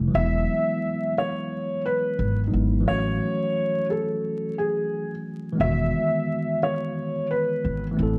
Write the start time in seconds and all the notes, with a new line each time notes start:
Already playing: C3 F3 G3 A3 E4
0.08 E3 F#3
0.13 E1 G#3 B3 E5
0.19 E4
1.18 C#5
1.86 B4
2.19 G#1
2.48 F#3 G#3 D#4
2.52 G#1 B3 E4
2.80 E3 F#3
2.86 A1 A3 C#4 C#5
2.92 F#4
3.90 A4
4.58 G#4
5.53 E3 G#3
5.58 E1 D#3 B3 E5
5.64 F#4
6.63 C#5
7.31 B4
7.65 G#1
7.91 E3 A3
7.97 A1 C4 E4
8.03 A4